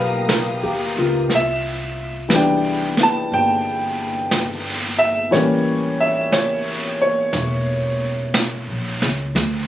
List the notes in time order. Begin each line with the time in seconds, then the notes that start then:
Already playing: B1 F3 G3 B3 D#4 G4 A#4 B4 D#5 E5 F5 G5 A#5 D#6
0.29 A#4, brush sweep, snare, hi-hat pedal
0.63 D#2 G4
0.97 C#2 F4
1.30 C2, brush sweep, snare
1.35 E5
2.29 E3 G3 B3, brush sweep, snare, hi-hat pedal
2.34 D4 G5
2.97 B3 E4, snare
3.03 A5
3.29 G1, brush sweep
3.34 G5
4.31 brush sweep, snare, hi-hat pedal
4.99 E5
5.31 A1 E3 G3 A#3 C#5, brush sweep, snare
5.36 C#4
6.00 E5
6.32 C#5, brush sweep, snare, hi-hat pedal
7.02 C#5
7.33 E1, brush sweep, snare
8.34 brush sweep, snare, hi-hat pedal
8.68 A#1
9.02 C#2, snare
9.35 D2, brush sweep, snare